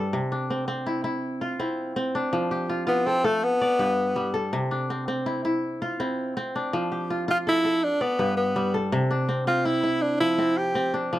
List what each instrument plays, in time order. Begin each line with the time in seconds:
Already playing: kora G2 G3 A4 B4 C5
0.13 kora C3
0.32 kora D4
0.50 kora C4
0.68 kora C4
0.86 kora E4
1.04 kora E4
1.41 kora F4
1.60 kora C4 E4
1.96 kora C4
2.15 kora D4
2.33 kora F3
2.51 kora G4
2.69 kora F4
2.87 tenor saxophone B3, kora F4
3.06 tenor saxophone C4, kora A4
3.24 tenor saxophone A3, kora A4
3.44 tenor saxophone B3
3.61 kora D5
3.79 kora G2 B4
4.16 kora G3
4.34 kora A4
4.53 kora C3
4.71 kora D4
4.90 kora C4
5.08 kora C4
5.26 kora E4
5.45 kora E4
5.82 kora F4
6.00 kora C4 E4
6.37 kora C4
6.56 kora D4
6.73 kora F3
6.92 kora G4
7.10 kora F4
7.28 kora F4, tenor saxophone F4
7.47 tenor saxophone E4, kora A4
7.65 kora A4
7.84 tenor saxophone D4
8.01 tenor saxophone B3, kora D5
8.19 kora G2 B4
8.37 tenor saxophone B3
8.56 kora G3
8.74 kora A4
8.92 kora C3
9.11 kora D4
9.29 kora C4
9.47 kora C4, tenor saxophone F4
9.65 kora E4, tenor saxophone E4
9.83 kora E4
10.02 tenor saxophone D4
10.20 kora F3, tenor saxophone E4
10.38 kora C4 E4
10.57 tenor saxophone G4
10.75 kora C4
10.94 kora D4
11.13 kora F3